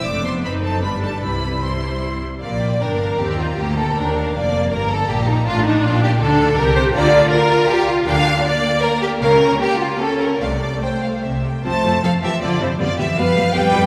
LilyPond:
<<
  \new Staff \with { instrumentName = "Violin section" } { \time 3/4 \key c \major \tempo 4 = 157 d'''8 c'''8 b''8 a''8 b''8 a''8 | b''4 c'''4. r8 | \key bes \major f''8 g''8 g''8 f''8 bes''4~ | bes''4 g''8 f''4. |
bes''2 a''4 | g''4 f''8 f''8 g''4 | \key f \major bes''8 r2 r8 | g''8 r2 r8 |
f''8 r2 r8 | f''8 r8 g''8 f''8 e''8 g''8 | a''4 f''8 e''8 d''8 c''8 | d''8 e''8 f''4 g''4 | }
  \new Staff \with { instrumentName = "Violin section" } { \time 3/4 \key c \major d''8 c''8 b'8 a'8 b'8 a'8 | b'4 c''4. r8 | \key bes \major d''4 bes'4 g'8 f'8 | g'8 a'8 bes'4 d''4 |
bes'8 a'8 g'8 ees'8 f'8 ees'8 | f'8 g'8 a'4 bes'8 c''8 | \key f \major d''4 bes'4 g'8 f'8 | f''4 d''4 bes'8 g'8 |
bes'4 g'8 f'8 a'8 bes'8 | d''4 c''4 r4 | c''4 a'8 g'8 f'8 e'8 | f'8 g'8 b'4 b'4 | }
  \new Staff \with { instrumentName = "Viola section" } { \time 3/4 \key c \major << { d'4 dis'4 d'4 | e'4 e'4. r8 | \key bes \major bes4 d'4 c'4 | bes4 d'4 bes4~ |
bes4 bes4 d'4~ | d'4 d'4 g'4 | \key f \major f'2. | d'4 bes2 |
des'4 bes4 des'4 | a2~ a8 r8 | c'8 c'8 c'8 c'8 c'8 c'8 | b8 b8 b8 b8 b8 b8 | } \\ { a8 b8 c'4 g4 | g4 g4. r8 | r2. | r2. |
r2. | r2. | r2. | r2. |
r2. | r2. | f8 f8 f8 f8 f8 f8 | g8 g8 g8 g8 g8 g8 | } >> }
  \new Staff \with { instrumentName = "Cello section" } { \clef bass \time 3/4 \key c \major f,4 fis,4 g,4 | c2~ c8 r8 | \key bes \major bes,4 g,4 ees,4 | d,4 ees,4 f,4 |
g,4 bes,4 a,4 | bes,4 d4 c4 | \key f \major d4 r2 | d4 r2 |
des4 r2 | c4 r4 c4 | a4 f8 e8 d8 c8 | d8 e8 f4 g4 | }
  \new Staff \with { instrumentName = "Double bass section" } { \clef bass \time 3/4 \key c \major f,,4 fis,,4 g,,4 | c,2~ c,8 r8 | \key bes \major bes,,4 g,,4 ees,4 | d,4 ees,4 f,,4 |
g,,4 bes,,4 a,,4 | bes,,4 d,4 c,4 | \key f \major d,4 r2 | d,4 r2 |
des,4 r2 | c,4 r4 c,4 | f,8 f,8 f,8 f,8 f,8 f,8 | f,8 f,8 f,8 f,8 f,8 f,8 | }
>>